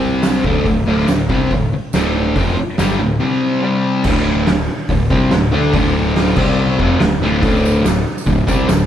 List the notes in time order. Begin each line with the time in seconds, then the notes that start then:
Already playing: C2 C3 G3 C4
0.22 snare, open hi-hat, tambourine
0.44 D1 D2 A2 D3, kick
0.66 D1 D2 A2, kick, open hi-hat
0.86 D1 D2 A2 D3
0.99 snare
1.08 D1 D2 A2, snare, open hi-hat, tambourine
1.29 C2 C3 G3 C4, kick
1.51 D1 D2 A2, kick, open hi-hat
1.72 muted picked electric bass stroke, muted distorted electric guitar stroke
1.93 D1 D2 A2 D3, snare, open hi-hat, tambourine
2.36 F1 F2 C3 F3, kick, open hi-hat
2.58 muted picked electric bass stroke, muted distorted electric guitar stroke
2.78 G1 G2 D3 G3, snare, open hi-hat, tambourine
3.00 D1 D2 A2
3.20 C3 G3 C4
3.62 C3 G3 C4
4.04 D1 D2 A2 D3, kick, crash
4.47 D1 D2 A2, snare, open hi-hat
4.88 D1 D2 A2, kick, open hi-hat
5.10 C2 C3 G3 C4, kick
5.31 D1 D2 A2, snare, open hi-hat
5.52 D2 D3 A3 D4
5.73 D1 D2 A2 D3, kick, open hi-hat
6.16 snare, open hi-hat
6.36 C2 C3 G3 C4, kick, crash
6.79 F1 F2 C3 F3, kick
7.00 D1 D2 A2, snare, open hi-hat
7.21 D1 D2 A2 D3
7.42 D1 D2 A2 D3, kick, open hi-hat, tambourine
7.56 tambourine
7.65 tambourine
7.76 tambourine
7.84 D1 D2 A2, snare, open hi-hat, tambourine
8.08 tambourine
8.18 tambourine
8.26 D1 D2 A2, kick, open hi-hat, tambourine
8.47 C2 C3 G3 C4, kick, tambourine
8.68 D1 D2 A2, snare, open hi-hat, tambourine
8.80 snare, tambourine